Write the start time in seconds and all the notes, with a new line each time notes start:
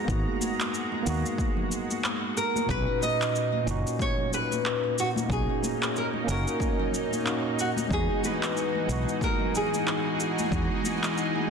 Already playing: G#3 B3 D#4 F#4 A#5
0.05 G#1 A#3 B3, kick
0.09 D#4 F#4, shaker
0.41 high conga, shaker
0.60 clap, shaker
0.74 shaker
0.92 high conga
1.03 D#2 A#3 B3
1.07 D#4 F#4, shaker
1.26 shaker
1.38 kick, high conga, shaker
1.57 low conga
1.72 shaker
1.90 high conga, shaker
2.04 clap, shaker
2.37 A#4, shaker
2.56 high conga, shaker
2.66 B1 A#2 C#4 D#4, kick
2.70 D#4 F#4 B4, shaker
3.02 D#5, high conga, shaker
3.22 clap, shaker
3.36 shaker
3.53 high conga
3.64 F#1 A#2 C#4
3.68 D#4 F#4, shaker
3.87 shaker
3.99 C#5, kick, high conga, shaker
4.18 low conga
4.33 B4, shaker
4.51 high conga, shaker
4.66 clap, shaker
4.99 F#4, shaker
5.16 high conga, shaker
5.26 B1 A#3 C#4, kick
5.30 C#4 D#4 F#4 G#4, shaker
5.63 high conga, shaker
5.83 clap, shaker
5.96 A#4, shaker
6.13 high conga
6.24 F#1 A#3 C#4
6.29 D#4 F#4 A#4, shaker
6.48 shaker
6.60 kick, high conga, shaker
6.80 low conga
6.94 shaker
7.11 high conga, shaker
7.24 A#3 C#4 D#4 F#4, clap, shaker
7.59 F#4, shaker
7.76 high conga, shaker
7.87 E2 E3 G#3 B3 F#4 G#4, kick
7.92 D#4 F#4 G#4, shaker
8.23 B4, high conga, shaker
8.43 clap, shaker
8.57 shaker
8.75 high conga
8.86 B1 G#3 B3
8.90 D#4 F#4, shaker
9.09 shaker
9.21 A#4, kick, high conga, shaker
9.40 low conga
9.55 G#4, shaker
9.73 high conga, shaker
9.87 clap, shaker
10.20 shaker
10.39 high conga, shaker
10.49 E2 G#3 B3, kick, shaker
10.53 D#4 F#4
10.84 high conga, shaker
11.03 clap, shaker
11.18 shaker
11.35 high conga
11.47 G#3